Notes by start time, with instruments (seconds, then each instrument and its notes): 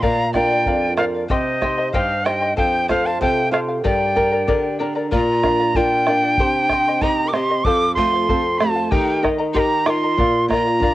0.01 nylon-string guitar A#2, charango A#4 D5 F5, pan flute F5, quena A#5, bombo low
0.32 nylon-string guitar D4 F4 A#4, charango A#4 D5 F5, pan flute D5, quena G5, bombo rim, bombo low
0.50 charango D5 F5
0.66 nylon-string guitar F2, charango A#4 D5 F5, bombo low
0.97 nylon-string guitar D4 F4 A#4, charango A#4 D5 F5, pan flute C5, quena F5, bombo rim
1.15 charango D5 F5
1.29 nylon-string guitar C3, charango G4 C5 D#5 G5 C6, pan flute C5, quena D#5 F5, bombo low
1.61 nylon-string guitar D#4 G4 C5, charango C5 D#5 G5 C6, bombo rim, bombo low
1.78 charango C5 D#5 C6
1.93 nylon-string guitar G2, charango G4 C5 D#5 G5 C6, pan flute C5, quena F5, bombo low
2.24 nylon-string guitar D#4 G4 C5, charango C5 D#5 G5 C6, pan flute D#5, quena G5, bombo rim
2.42 charango C5 D#5 C6
2.56 nylon-string guitar F2, charango A4 C5 F5, pan flute C5, quena G5, bombo low
2.88 nylon-string guitar F4 A4 C5, charango A4 C5 F5, pan flute C5, quena F5, bombo rim, bombo low
3.05 charango C5 F5, pan flute F5, quena A5
3.21 nylon-string guitar C3, charango A4 C5 F5, pan flute C5, quena G5, bombo low
3.51 nylon-string guitar F4 A4 C5, charango A4 C5 F5, pan flute C5, quena F5, bombo rim
3.68 charango C5 F5
3.84 nylon-string guitar G2, charango G4 A#4 D5 G5 A#5, pan flute D5, quena G5, bombo low
4.15 nylon-string guitar D4 G4 A#4, charango A#4 D5 G5 A#5, bombo low
4.31 charango A#4 D5 A#5
4.47 nylon-string guitar D3, charango G4 A#4 D5 G5 A#5, bombo low
4.79 nylon-string guitar D4 G4 A#4, charango A#4 D5 G5 A#5
4.95 charango A#4 D5 A#5
5.11 nylon-string guitar A#2, pan flute F4, charango A#4 D5 F5, quena A#5, bombo low
5.43 nylon-string guitar D4, charango A#4 D5 F5, bombo rim, bombo low
5.59 charango D5 F5
5.75 pan flute D4, nylon-string guitar F4, charango A#4 D5 F5, quena G5, bombo low
6.07 nylon-string guitar D4, charango A#4 D5 F5, bombo rim
6.23 charango D5 F5
6.38 nylon-string guitar C3, charango G4 C5 G5 C6, bombo low
6.69 nylon-string guitar C4, charango C5 D#5 G5 C6, bombo rim, bombo low
6.88 charango C5 D#5 C6
7.01 pan flute D#4, nylon-string guitar D#4, charango G4 C5 D#5 G5 C6, quena A#5, bombo low
7.26 pan flute A#4, quena D6
7.33 nylon-string guitar C4, pan flute G4, charango C5 D#5 G5 C6, quena C6, bombo rim
7.50 charango C5 D#5 C6
7.64 nylon-string guitar F2, pan flute A4, charango A4 C5 F5, quena D6, bombo low
7.95 nylon-string guitar A3, pan flute F4, charango A4 C5, quena C6, bombo low
7.99 charango F5
8.13 charango C5 F5
8.29 nylon-string guitar C4, charango A4 C5 F5, bombo low
8.58 nylon-string guitar A3, pan flute F4, charango A4 C5 F5, quena A5, bombo rim
8.76 charango C5 F5
8.91 nylon-string guitar D#3, pan flute D#4, charango G4 A#4 D#5 G5 A#5, quena G5, bombo low
9.23 nylon-string guitar D#4, charango A#4 D#5 G5 A#5, bombo rim, bombo low
9.39 charango A#4 D#5 A#5
9.54 pan flute D#4, nylon-string guitar G4, charango G4 A#4 D#5 G5 A#5, quena C6, bombo low
9.59 quena A#5
9.85 nylon-string guitar D#4, pan flute F4, charango A#4 D#5 G5 A#5, quena D6, bombo rim
9.90 quena C6
10.03 charango A#4 D#5 A#5
10.18 nylon-string guitar A#2, charango A#4 D5 F5, bombo low
10.48 nylon-string guitar A#3, pan flute F4, charango A#4 D5, quena A#5, bombo rim, bombo low
10.52 charango F5
10.67 charango D5 F5
10.80 nylon-string guitar D4, charango A#4 D5 F5, bombo low